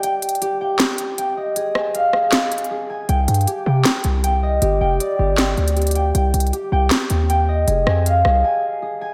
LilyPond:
<<
  \new Staff \with { instrumentName = "Harp" } { \time 4/4 \key c \minor \tempo 4 = 157 g''4 g'8 g''4. g''8 ees''8 | aes'8 aes''8 f''8 aes'8 aes''4 aes'8 aes''8 | g''4 g'8 g''4. g''8 ees''8 | g'8 g''8 d''8 g'8 g''4 g'8 g''8 |
g''4 g'8 g''4. g''8 ees''8 | aes'8 aes''8 f''8 aes'8 aes''4 aes'8 aes''8 | }
  \new Staff \with { instrumentName = "808-style bass" } { \clef bass \time 4/4 \key c \minor r1 | r1 | c,8 g,8 r8 c8 r8 c,4. | g,,8 f,,8 r8 g,,4 d,4. |
c,8 c,8 r8 c,8 r8 ees,4. | f,,8 f,4 c,8 r2 | }
  \new DrumStaff \with { instrumentName = "Drums" } \drummode { \time 4/4 \tuplet 3/2 { hh16 r16 r16 hh16 hh16 hh16 } hh4 <hc hh sn>8 hh8 hh4 | hh8 ss8 hh8 ss8 \tuplet 3/2 { <hc hh sn>16 r16 r16 hh16 hh16 hh16 } r4 | \tuplet 3/2 { hh16 r16 r16 hh16 hh16 hh16 } hh4 <hc hh sn>8 hh8 hh4 | hh4 hh4 <hc hh sn>8 hh16 hh16 hh32 hh32 hh32 hh32 hh8 |
\tuplet 3/2 { hh16 r16 r16 hh16 hh16 hh16 } hh4 <hc hh sn>8 hh8 hh4 | hh8 ss8 hh8 ss8 r4 r4 | }
>>